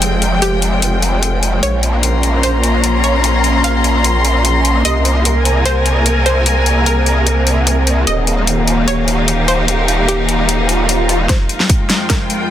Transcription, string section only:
Already playing: G#3 F4 G5
1.63 C#4
1.88 A#5
1.92 C6
4.85 A#3
4.98 A#4
5.41 G#5
8.07 D#4
8.25 F5
8.32 G4
11.29 F4
11.55 G#3 G5

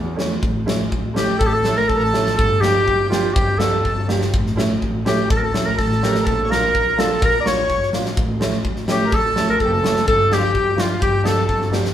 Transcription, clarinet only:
1.15 G4
1.39 A4
1.46 G4
1.53 A4
1.77 A#4
1.88 A4
2.37 A4
2.61 G4
3.10 F4
3.33 G4
3.59 A4
5.07 G4
5.31 A4
5.37 A#4
5.44 A4
5.65 A#4
5.78 A4
6.27 A4
6.51 A#4
6.99 A4
7.25 A#4
7.40 D5
7.48 C#5
8.92 G4
9.15 A4
9.50 A#4
9.61 A4
10.08 A4
10.33 G4
10.80 F4
11.02 G4
11.26 A4

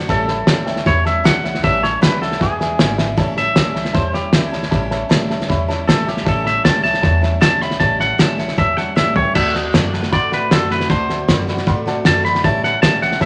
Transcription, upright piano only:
0.08 C#5 E5 A5
0.28 C#5 E5 B5
0.47 C#5 E5 A5
0.66 C#5 E5 G5
0.85 C#5 E5 B5
1.05 C#5 E5 A5
1.24 C#5 E5 A5
1.44 C#5 E5 F#5
1.63 C#5 E5 A5
1.82 C#5 E5 A5
2.01 C#5 E5 A5
2.20 C#5 E5 F#5
2.39 B4 E5 G#5
2.60 B4 E5 G#5
2.79 B4 E5 G#5
2.98 B4 E5 G#5
3.17 C#5 E5 A5
3.36 C#5 A5
3.55 C#5 E5 A5
3.74 C#5 E5 A5
3.93 C#5 E5 A5
4.12 C#5 E5 B5
4.33 C#5 E5 A5
4.52 C#5 E5 A5
4.71 C#5 E5 A5
4.91 C#5 E5 A5
5.09 C#5 E5 A5
5.30 C#5 E5 A5
5.48 C#5 E5 B5
5.68 C#5 E5 A5
5.88 C#5 E5 A5
6.06 C#5 E5 A5
6.25 C#5 E5 A5
6.44 C#5 E5 A5
6.64 C#5 E5 A5
6.83 C#5 E5 A5
7.02 C#5 E5 A5
7.22 C#5 E5 A5
7.41 C#5 A5
7.62 C#5 E5 F#5
7.80 C#5 E5 A5
8.00 C#5 E5 A5
8.19 C#5 E5 A5
8.39 C#5 E5 A5
8.57 C#5 E5 A5
8.78 C#5 E5 A5
8.97 C#5 E5 A5
9.17 C#5 G5
9.35 D5 F#5 A5
9.55 D5 F#5 A5
9.74 D5 F#5 A5
9.94 D5 F#5 A5
10.12 D5 F#5 C6
10.31 D5 F#5 B5
10.50 D5 F#5 C6
10.70 D5 F#5 B5
10.89 D5 F#5 A5
11.10 D5 F#5 A5
11.29 D5 F#5 B5
11.49 D5 F#5 B5
11.68 D5 F#5 C6
11.87 D5 F#5 A5
12.07 F#5 A5
12.26 D5 F#5 C6
12.45 C#5 E5 A5
12.63 C#5 E5 A5
12.82 C#5 E5 F#5
13.02 C#5 E5 G5
13.20 C#5 E5 A5

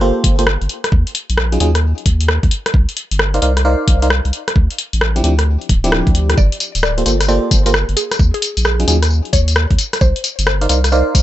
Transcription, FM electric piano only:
0.01 A#3 F4 G4 A4 C5
0.39 A#3 F4 G4 A4 C5
1.52 F#3 C#4 D#4 F4 G#4
1.60 F#3 C#4 D#4 F4 G#4
3.34 D#4 A#4 C5 D5 F5
3.42 D#4 A#4 C5 D5 F5
3.65 D#4 A#4 C5 D5 F5
4.02 D#4 A#4 C5 D5 F5
5.16 F3 C4 D4 E4 G4
5.24 F3 C4 D4 E4 G4
5.84 F3 C4 D4 E4 G4
6.98 A#3 F4 G4 A4 C5
7.06 A#3 F4 G4 A4 C5
7.28 A#3 F4 G4 A4 C5
7.66 A#3 F4 G4 A4 C5
8.80 F#3 C#4 D#4 F4 G#4
8.88 F#3 C#4 D#4 F4 G#4
10.61 D#4 A#4 C5 D5 F5
10.69 D#4 A#4 C5 D5 F5
10.92 D#4 A#4 C5 D5 F5

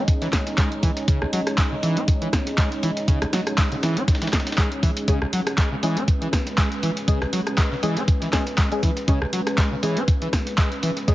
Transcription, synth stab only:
5.08 G#3 C#4 G#4
5.83 G#3 C#4 G#4
7.08 G#3 C#4 G#4
7.83 G#3 C#4 G#4
8.33 G#3 C#4 G#4
8.72 G#3 C#4 G#4
9.08 G#3 C#4 G#4
9.83 G#3 C#4 G#4
11.08 G#3 C#4 G#4

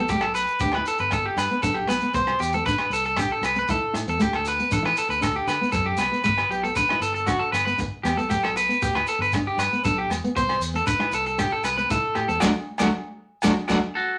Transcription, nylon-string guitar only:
0.12 A3
0.63 D4
0.76 E4
1.13 muted nylon-string guitar stroke
1.51 B3
1.64 D4
1.88 B3
2.02 B3
2.15 B3
2.54 C4
2.68 D4
3.19 D4
3.56 C4
3.70 E4
3.93 E4
4.07 C4
4.19 A3
4.60 B3
4.71 D4
4.83 E4
5.21 D4
5.61 B3
5.73 C4
5.97 B3
6.12 B3
6.24 A3
6.64 B3
6.77 D4
6.91 E4
7.27 D4
7.66 B3
7.78 muted nylon-string guitar stroke
8.04 B3
8.17 B3
8.29 A3
8.69 B3
8.96 E4
9.35 D4
9.73 B3
9.86 D4
10.11 muted nylon-string guitar stroke
10.24 B3
10.36 B3
10.74 C4
10.86 D4
10.99 E4
11.38 D4
11.78 C4
11.91 E4
12.28 C4
12.43 F#3 A3 D4
12.81 F#3 A3 D4
13.44 F#3 A3 D4
13.71 F#3 A3 D4

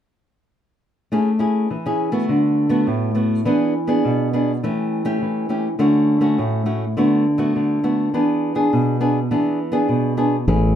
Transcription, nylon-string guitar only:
1.12 A3 C#4 E4 G#4
1.39 C#4 E4 G#4
1.70 E3
1.86 C#4 E4 G#4
2.12 A3 B3 F#4
2.29 D3
2.69 A3 B3 F#4
2.87 A2
3.15 A3 B3 F#4
3.45 E3 B3 D4 G#4
3.87 B3 D4 G#4
4.05 B2
4.33 B3 D4 G#4
4.63 E3 A3 C#4 G4
5.05 A3 C#4 G4
5.22 E3
5.49 A3 C#4 G4
5.79 D3 A3 C#4 F#4
6.21 A3 C#4 F#4
6.38 A2
6.66 A3 C#4 F#4
6.97 D3 A3 B3 F#4
7.38 A3 B3 F#4
7.56 D3
7.84 A3 B3 F#4
8.14 E3 B3 D4 G#4
8.55 B3 D4 G#4
8.73 B2
9.01 B3 D4 G#4
9.31 E3 B3 D4 G#4
9.72 B3 D4 G#4
9.89 B2
10.17 B3 D4 G#4
10.48 A3 C#4 E4 G#4

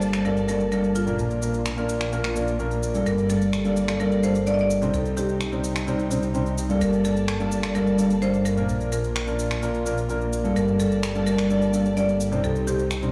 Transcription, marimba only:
Already playing: C5
0.25 A#4
0.48 A#4
0.72 A#4
0.95 F4
3.06 A#4
3.30 A4
4.00 A#4
4.23 C5
4.47 D5
4.54 D#5
4.61 D5
4.94 A4
5.17 G4
6.81 A#4
7.05 A4
7.75 A#4
8.22 C5
8.45 A#4
8.92 A#4
10.56 A#4
10.80 A4
11.27 A#4
11.97 D5
12.44 A4
12.67 G4

